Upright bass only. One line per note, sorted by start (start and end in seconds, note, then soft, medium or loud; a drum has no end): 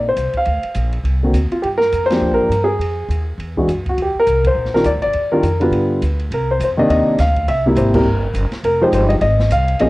0.00 0.15 A#1 medium
0.17 0.33 C2 medium
0.33 muted upright bass stroke soft
0.46 0.62 D2 medium
0.64 muted upright bass stroke soft
0.75 1.03 A#1 medium
1.04 1.32 C2 medium
1.33 1.50 D2 medium
1.52 muted upright bass stroke soft
1.64 1.92 G2 medium
1.93 2.20 F2 medium
2.21 2.31 D2 medium
2.31 2.40 A#1 soft
2.40 2.49 G1 medium
2.49 2.78 G2 medium
2.79 3.08 F2 medium
3.09 3.37 D#2 medium
3.38 3.67 E2 medium
3.68 3.96 F#2 medium
3.98 4.14 D#2 medium
4.15 muted upright bass stroke soft
4.27 4.54 C2 medium
4.55 4.83 A#1 medium
4.85 4.97 D2 medium
4.96 5.05 A#1 soft
5.05 5.14 G1 medium
5.14 5.42 D#2 medium
5.42 5.70 F2 medium
5.71 6.00 G2 medium
6.02 6.30 D2 medium
6.31 6.59 C2 medium
6.60 6.88 F2 medium
6.89 7.05 D#2 medium
7.08 muted upright bass stroke soft
7.19 7.47 D2 medium
7.48 7.75 C2 medium
7.75 8.03 G#1 medium
8.04 8.33 G1 medium
8.33 8.50 F#1 medium
8.63 8.91 F1 medium
8.92 9.20 G1 medium
9.21 9.49 G#1 medium
9.50 9.78 C2 medium
9.80 9.89 A#1 medium